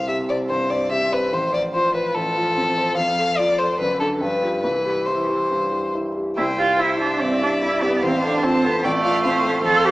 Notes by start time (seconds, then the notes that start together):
Already playing: C2 C3 C5
0.08 G4 E5
0.29 C5 D5
0.49 G2 C5
0.70 C5 D5
0.92 G4 E5
1.12 B4 C5
1.32 A1 F3 C5
1.53 C5 D5
1.74 F4 C5
1.95 B4 C5
2.15 A1 A4
2.36 F4
2.57 C4
2.78 C5
2.97 F2 F5
3.18 A4
3.38 F4 D5
3.59 A4 C5
3.79 F#2 D3 B4
4.00 D4 A4
4.20 G2 F3 B4
4.42 F4 G4
4.63 C2 E3 B4
4.85 G4
5.07 E4 C5
5.28 G4
5.51 G2
5.72 G4
5.95 E4
6.17 G4
6.37 C2 E4 C5 G5
6.58 F4 G4
6.79 E4 C5 E5
7.00 D4 G4
7.21 G2 C4 D5
7.42 D4 G4
7.62 E4
7.83 B3 G4
8.02 A1 C4 C5 F5
8.23 D4 A4
8.43 C4 F4 C5 A5
8.64 B3 A4
8.79 B3
8.84 A1 A3 D5 G5
9.03 F4 F5
9.24 C4 C5 F5
9.44 A4
9.64 F2 A4 C5 F5
9.84 G4 A4